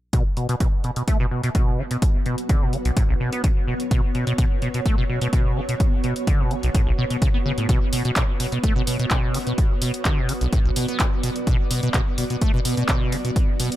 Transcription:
0.13 acid bass B2, ambient pad B3, kick, closed hi-hat
0.32 ambient pad F#4
0.37 acid bass B2, closed hi-hat
0.49 acid bass B2, closed hi-hat
0.60 acid bass B2, kick, closed hi-hat
0.84 acid bass B2, closed hi-hat
0.96 acid bass B2, closed hi-hat
1.08 acid bass A3, kick, closed hi-hat
1.20 acid bass B2
1.31 acid bass B2
1.44 acid bass B2, closed hi-hat
1.55 acid bass B2, kick, closed hi-hat
1.79 acid bass D3
1.88 acid bass B2, ambient pad C#5, closed hi-hat
2.02 kick, closed hi-hat
2.26 acid bass B2, closed hi-hat
2.38 closed hi-hat
2.49 acid bass D3, kick, closed hi-hat
2.62 acid bass B2
2.73 acid bass D3, closed hi-hat
2.85 acid bass B1, closed hi-hat
2.97 acid bass A2, kick, closed hi-hat
3.09 acid bass B1
3.20 acid bass B2
3.33 acid bass B3, closed hi-hat
3.44 acid bass D3, kick, closed hi-hat
3.67 acid bass B2
3.80 closed hi-hat
3.91 acid bass B2, kick, closed hi-hat
4.15 acid bass B2, closed hi-hat
4.27 acid bass B2, closed hi-hat
4.38 acid bass B2, kick, closed hi-hat
4.62 acid bass B2, closed hi-hat
4.74 acid bass B2, closed hi-hat
4.86 acid bass A3, kick, closed hi-hat
4.98 acid bass B2
5.09 acid bass B2
5.22 acid bass B2, closed hi-hat
5.33 acid bass B2, kick, closed hi-hat
5.56 acid bass D3
5.69 acid bass B2, closed hi-hat
5.80 kick, closed hi-hat
6.04 acid bass B2, closed hi-hat
6.16 closed hi-hat
6.27 acid bass D3, kick, closed hi-hat
6.40 acid bass B2
6.51 acid bass D3, closed hi-hat
6.63 acid bass B1, closed hi-hat
6.75 acid bass A2, kick, closed hi-hat
6.87 acid bass B1
6.98 acid bass B2
7.10 acid bass B2, closed hi-hat
7.22 acid bass C#3, kick, closed hi-hat
7.34 acid bass B3
7.45 acid bass C#3
7.58 acid bass A2, closed hi-hat
7.69 acid bass B2, kick, closed hi-hat
7.93 acid bass B2, open hi-hat
8.05 acid bass B2, closed hi-hat
8.16 acid bass B2, kick, clap, closed hi-hat
8.40 acid bass B2, open hi-hat
8.52 acid bass B2, closed hi-hat
8.64 acid bass A3, kick, closed hi-hat
8.76 acid bass B2
8.87 acid bass B2, open hi-hat
8.99 acid bass B2, closed hi-hat
9.11 acid bass B2, kick, clap, closed hi-hat
9.34 acid bass D3, open hi-hat
9.44 acid bass B2, ambient pad D5, closed hi-hat
9.58 kick, closed hi-hat
9.82 acid bass B2, open hi-hat
9.94 closed hi-hat
10.05 acid bass D3, kick, clap, closed hi-hat
10.18 acid bass B2
10.29 acid bass D3, open hi-hat
10.41 acid bass B1, closed hi-hat
10.53 acid bass A2, kick, closed hi-hat
10.65 acid bass B1
10.76 acid bass B2, open hi-hat
10.88 acid bass B3, closed hi-hat
11.00 acid bass D3, kick, clap, closed hi-hat
11.23 acid bass B2, open hi-hat
11.36 closed hi-hat
11.47 acid bass B2, kick, closed hi-hat
11.71 acid bass B2, open hi-hat
11.83 acid bass B2, closed hi-hat
11.94 acid bass B2, kick, clap, closed hi-hat
12.18 acid bass B2, open hi-hat
12.30 acid bass B2, closed hi-hat
12.41 acid bass A3, kick, closed hi-hat
12.54 acid bass B2
12.65 acid bass B2, open hi-hat
12.77 acid bass B2, closed hi-hat
12.89 acid bass B2, kick, clap, closed hi-hat
13.12 acid bass D3, open hi-hat
13.25 acid bass B2, closed hi-hat
13.36 kick, closed hi-hat
13.60 acid bass B2, open hi-hat
13.72 closed hi-hat

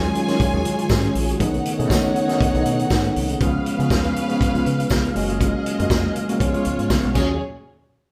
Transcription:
Already playing: tine electric piano D#3 F#3 G#3 C#4 F4, tonewheel organ D#3 F#3 C#4 G#4, string section F4 C#5 G#5
0.03 muted clean electric guitar stroke, closed hi-hat
0.15 muted clean electric guitar stroke, closed hi-hat
0.27 tine electric piano D#3 F#3 G#3 C#4 F4, clean electric guitar C#4 F#4 G#4, snare, closed hi-hat
0.40 muted clean electric guitar stroke, kick, closed hi-hat
0.53 fingered electric bass D#2, clean electric guitar C#4 F#4 G#4
0.65 fingered electric bass D#3, muted clean electric guitar stroke, closed hi-hat
0.78 closed hi-hat
0.89 fingered electric bass G#2, clean electric guitar C#4 F#4 G#4, kick, snare, tambourine
1.04 muted clean electric guitar stroke, closed hi-hat
1.15 fingered electric bass A#1, muted clean electric guitar stroke, open hi-hat
1.29 clean electric guitar C#4 F#4 G#4, closed hi-hat
1.39 fingered electric bass B1, tonewheel organ C#3 A3 B3 D#4, tine electric piano D#3 A3 B3 C#4 G#4, clean electric guitar A3 D#4 G#4, string section D#4 C#5 F#5, kick, closed hi-hat
1.54 muted clean electric guitar stroke, closed hi-hat
1.65 muted clean electric guitar stroke, closed hi-hat
1.78 fingered electric bass B2, tine electric piano D#3 A3 B3 C#4 G#4, clean electric guitar A3 D#4 G#4, closed hi-hat
1.90 fingered electric bass D#2, clean electric guitar A3 D#4 G#4, kick, snare, tambourine
2.05 muted clean electric guitar stroke
2.16 muted clean electric guitar stroke, closed hi-hat
2.27 tine electric piano D#3 A3 B3 C#4 G#4, clean electric guitar D#4 G#4, snare, closed hi-hat
2.31 clean electric guitar A3
2.41 muted clean electric guitar stroke, kick, closed hi-hat
2.54 fingered electric bass B1, clean electric guitar A3 D#4 G#4, closed hi-hat
2.65 fingered electric bass B2, muted clean electric guitar stroke, closed hi-hat
2.79 muted clean electric guitar stroke, closed hi-hat
2.90 fingered electric bass G#2, clean electric guitar A3 D#4 G#4, kick, snare, tambourine
3.04 muted clean electric guitar stroke, closed hi-hat
3.16 fingered electric bass C2, muted clean electric guitar stroke, open hi-hat
3.29 clean electric guitar A3 D#4 G#4, closed hi-hat
3.40 fingered electric bass C#2, tine electric piano F3 G#3 B3 C#4 G#4, tonewheel organ F3 F5, clean electric guitar B3 F4 G#4, string section C#4 B4 F5, kick, closed hi-hat
3.54 muted clean electric guitar stroke
3.66 muted clean electric guitar stroke, closed hi-hat
3.78 fingered electric bass C#3, tine electric piano F3 G#3 B3 C#4 G#4, clean electric guitar B3 F4 G#4, closed hi-hat
3.90 fingered electric bass D#2, clean electric guitar B3 F4 G#4, kick, snare, tambourine
4.04 muted clean electric guitar stroke, closed hi-hat
4.16 muted clean electric guitar stroke, closed hi-hat
4.28 tine electric piano F3 G#3 B3 C#4 G#4, clean electric guitar B3 F4 G#4, closed hi-hat
4.41 muted clean electric guitar stroke, kick, closed hi-hat
4.54 fingered electric bass C#2, clean electric guitar B3 F4 G#4, closed hi-hat
4.66 fingered electric bass C#3, muted clean electric guitar stroke, closed hi-hat
4.80 muted clean electric guitar stroke, closed hi-hat
4.90 fingered electric bass C#2, clean electric guitar B3 F4 G#4, kick, snare, tambourine
5.04 muted clean electric guitar stroke, closed hi-hat
5.15 fingered electric bass F#1, tonewheel organ F#3 A#3, tine electric piano G#3 A#3 C#4 F4 F#4, string section A#3 G#4 D#5, muted clean electric guitar stroke, open hi-hat
5.29 clean electric guitar A#3 F4 G#4, closed hi-hat
5.41 clean electric guitar A#3 F4 G#4, kick, closed hi-hat
5.55 muted clean electric guitar stroke
5.66 muted clean electric guitar stroke, closed hi-hat
5.78 fingered electric bass F#2, tine electric piano G#3 A#3 C#4 F4 F#4, clean electric guitar A#3 F4 G#4, closed hi-hat
5.90 fingered electric bass F2, clean electric guitar A#3 F4 G#4, kick, snare, tambourine
6.04 muted clean electric guitar stroke
6.16 muted clean electric guitar stroke, closed hi-hat
6.28 tine electric piano F3 G#3 A#3 C#4 F#4, clean electric guitar A#3 F4 G#4, closed hi-hat
6.40 fingered electric bass C#2, tine electric piano F3 G#3 B3 C#4 G4, tonewheel organ F3 B3, string section G#3 F4 C#5, muted clean electric guitar stroke, kick, closed hi-hat
6.47 tine electric piano G#4
6.54 clean electric guitar B3 F4 G#4, closed hi-hat
6.65 fingered electric bass C#2, closed hi-hat
6.79 fingered electric bass G#2, muted clean electric guitar stroke, closed hi-hat
6.90 fingered electric bass C#2, clean electric guitar B3 F4 G#4, kick, snare, tambourine
7.03 fingered electric bass B1, muted clean electric guitar stroke, closed hi-hat
7.14 fingered electric bass D#2, tonewheel organ D#3 F#3 G#3 C#4 F4, tine electric piano F#3 C#4 F4 G#4, string section A#3 G#4 C#5, clean electric guitar C#4 F#4 G#4, kick, crash, tambourine

